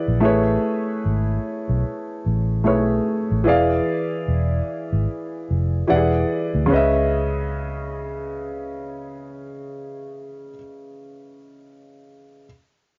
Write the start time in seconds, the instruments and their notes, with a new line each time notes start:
Already playing: grand piano E3 E4 G#4 D5 F#5
0.08 fingered electric bass A#1
0.21 grand piano A3 E4 G#4 B4
0.25 fingered electric bass A1, grand piano C#5
1.06 fingered electric bass G#1
1.69 fingered electric bass B1
2.26 fingered electric bass A1
2.64 fingered electric bass B1, grand piano A3 E4 G#4 B4 C#5
3.31 fingered electric bass A1
3.44 fingered electric bass E1, grand piano E3 E4 G#4 D5
3.49 grand piano F5
4.28 fingered electric bass E1
4.93 fingered electric bass G#1
5.50 fingered electric bass F1
5.87 grand piano E3 E4 G4 D5 F#5
5.91 fingered electric bass E1
5.96 grand piano G#4
6.55 fingered electric bass D2
6.66 grand piano C#3 C#4
6.71 fingered electric bass C#2, grand piano B4 D#5
6.76 grand piano E5